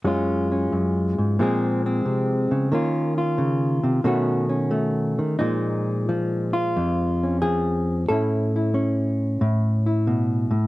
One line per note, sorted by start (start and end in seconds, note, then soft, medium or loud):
0.04 0.71 F#2 medium
0.04 1.37 F#3 soft
0.04 1.39 G#3 soft
0.04 0.51 C#4 soft
0.04 1.41 F4 soft
0.52 1.41 C#4 soft
0.72 1.18 F#2 soft
1.18 1.39 G#2 soft
1.39 2.05 A#2 medium
1.39 2.70 F3 medium
1.39 2.72 G#3 soft
1.39 1.85 C4 medium
1.39 2.71 G#4 medium
1.86 2.72 C4 soft
2.05 2.51 C3 soft
2.51 2.72 C#3 soft
2.72 4.03 D#3 medium
2.72 4.01 A#3 soft
2.72 4.01 C#4 soft
2.72 3.17 F4 medium
3.18 4.04 F4 medium
3.38 3.83 C#3 medium
3.84 4.04 C3 soft
4.04 5.19 B2 medium
4.04 5.18 D#3 medium
4.04 4.70 A3 soft
4.04 4.48 C#4 medium
4.04 5.39 F#4 medium
4.49 5.37 C#4 soft
4.71 5.37 A3 soft
5.19 5.40 D#3 soft
5.39 6.76 A#2 medium
5.39 6.08 F3 soft
5.39 8.10 G#3 soft
5.39 7.22 D#4 medium
6.09 7.41 F3 medium
6.53 7.41 F4 medium
6.77 8.09 F2 medium
7.24 8.07 C#4 soft
7.42 8.06 F3 soft
7.42 8.08 G#4 medium
8.09 9.40 A2 medium
8.09 8.73 C#4 soft
8.09 8.55 E4 soft
8.09 10.67 A4 medium
8.56 9.85 E4 soft
8.74 10.67 C#4 medium
9.41 10.49 A2 medium
9.86 10.67 E4 soft
10.07 10.52 B2 soft
10.51 10.67 A2 medium